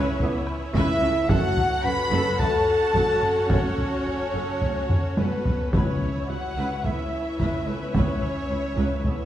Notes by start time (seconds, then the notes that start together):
Already playing: C#4 E4 B4 C#5 E5
0.19 C#2 C#3 E3 B3 A4, taiko low
0.47 taiko rim
0.74 C#2 C#3 E4 B4 E5, taiko
1.01 C#2 C#3 A4
1.29 F#1 F#2 F#3 A3 C#4 F#4 A4 C#5 F#5, taiko
1.57 taiko low
1.84 F#1 F#2 A4 B4 B5
2.11 F#1 F#2 A4
2.39 F#1 F#2 F#3 A3 G#4 A4 A5, taiko low
2.94 F#1 F#2 A4, taiko
3.22 F#1 F#2 G#4
3.49 F#1 F#2 F#3 A3 C#4 A4 C#5, taiko
3.78 taiko low
4.05 F#1 F#2 A4
4.33 F#1 F#2 A4
4.61 F#1 F#2 F#3 A3 G#4, taiko low
4.89 taiko low-mid
5.17 F#1 F#2 B3 A4 B4, taiko high
5.45 F#1 F#2 G#4, taiko low
5.73 C#2 C#3 E3 B3 C#4 E4 B4 C#5 E5, taiko
6.01 taiko low
6.28 C#2 F#4 B4 F#5
6.57 C#2 B4
6.83 C#2 E3 B3 E4 A4 E5, taiko low
7.39 C#2 B4, taiko
7.66 C#2 B3 A4 B4
7.93 C#2 E3 B3 C#4 B4 C#5, taiko
8.22 taiko low
8.50 C#2 B4
8.77 C#2 B4
9.04 C#2 E3 B3 A4, taiko low